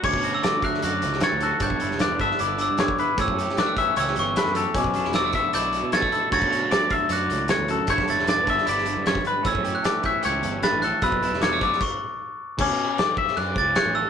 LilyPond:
<<
  \new Staff \with { instrumentName = "Glockenspiel" } { \time 4/4 \key d \major \tempo 4 = 153 d'''8. e'''8. fis'''8 fis'''4 a'''8 fis'''8 | g'''4 fis'''8 e'''8 d'''8 e'''8 d'''8. r16 | e'''4 fis'''4 e'''8 cis'''4. | d'''4 e'''4 g'''4 a'''8. r16 |
a'''4 a'''4 fis'''4. r8 | g'''8 a'''8 a'''4 b'''4. r8 | e'''8. fis'''8. g'''8 g'''4 a'''8 fis'''8 | e'''4 d'''4 cis'''4 r4 |
d'''2 fis'''8 a'''8 fis'''8 e'''8 | }
  \new Staff \with { instrumentName = "Clean electric guitar" } { \time 4/4 \key d \major cis''4 d''8 e''8 d''4 cis''8 a'8 | cis''4 d''8 e''8 d''4 cis''8 b'8 | cis''4 d''8 e''8 cis''4 b'8 a'8 | cis'4 d''8 e''8 d''4 cis''8 a'8 |
cis''4 d''8 e''8 d''4 cis''8 a'8 | cis''4 d''8 e''8 d''4 cis''8 b'8 | cis''4 d''8 e''8 cis''4 b'8 a'8 | b'4 cis''8 d''8 r2 |
cis'4 d''8 e''8 d''4 cis''8 a'8 | }
  \new Staff \with { instrumentName = "Clean electric guitar" } { \time 4/4 \key d \major << { <fis cis'>8 fis'8 fis4 fis'4 fis8 fis'8 | d'8 e'8 b8 d'8 e'4 b8 e'8 | cis'8 g'8 fis16 a16 cis'8 g'4 a8 g'8 | b8 d'16 e'16 fis16 a16 b8 e'4 fis16 a16 e'8 |
<d fis cis' fis'>8 fis'8 fis4 fis'2 | <d b d' e'>8 e'8 b8 d'8 e'2 | cis'8 g'8 a8 cis'8 g'2 | b8 e'8 fis16 a16 b8 r2 |
r1 | } \\ { <d, d>4. d4 a,4. | g,4. d4 d4. | a,4. e4 e,4. | b,4. d4 b,4. |
d,4. d4 a,8 e,8 fis,8 | g,4. d4 d8 fis,8 g,8 | a,4. e4 e,8 g,8 a,8 | b,4. d8 r2 |
r1 | } >> }
  \new Staff \with { instrumentName = "Picked electric bass" } { \clef bass \time 4/4 \key d \major d,16 b,8 r4 r16 fis,8 cis,8 r16 d,8 r16 | g,,16 b,,16 g,,16 e,,8. g,,16 r16 g,,8. g,8 r8. | a,,16 fis,8 r4 r16 cis,8 g,,8 r16 fis,8 r16 | b,,16 b,,16 b,,16 e,,8. b,,16 r16 b,,8. b,8 r8. |
d,16 b,8 r4 r16 fis,8 cis,8 r16 d,8 r16 | g,,16 b,,16 g,,16 e,,8. g,,16 r16 g,,8. g,8 r8. | a,,16 fis,8 r4 r16 cis,8 g,,8 r16 a,,8 r16 | b,,16 b,,16 b,,16 e,,8. b,,16 r2 r16 |
d,16 b,8 r4 r16 fis,8 cis,8 r16 a,,8 r16 | }
  \new DrumStaff \with { instrumentName = "Drums" } \drummode { \time 4/4 <cymc bd>16 bd16 hh8 <hh sn>8 <hh bd>16 sn16 hh8 hh16 sn16 <hh sn>8 hh8 | <hh bd>16 bd16 hh16 sn16 <hh sn>8 <hh bd>16 sn16 hh8 hh8 <hh sn>16 bd16 hh8 | <hh bd>16 bd16 hh16 sn16 <hh sn>8 <hh bd>8 hh16 sn16 hh8 <hh sn>16 sn16 hh8 | <hh bd>16 bd16 hh16 sn16 <hh sn>8 <hh bd>8 hh8 hh8 <hh sn>16 <bd sn>16 hh8 |
<cymc bd>16 bd16 hh8 <hh sn>8 <hh bd>8 hh8 hh8 <hh sn>8 hh8 | <hh bd>16 <bd sn>16 hh16 sn16 <hh sn>8 <hh bd>16 sn16 hh16 sn16 hh8 <hh sn>16 <bd sn>16 hh8 | <hh bd>16 bd16 hh8 <hh sn>8 <hh bd>8 hh8 hh8 <hh sn>8 hh8 | <hh bd>16 bd16 hh16 sn16 <hh sn>8 <hh bd>16 sn16 <cymc bd>4 r4 |
<cymc bd>4 <cymc sn>8 bd16 sn16 cymc8 bd8 <cymc sn>4 | }
>>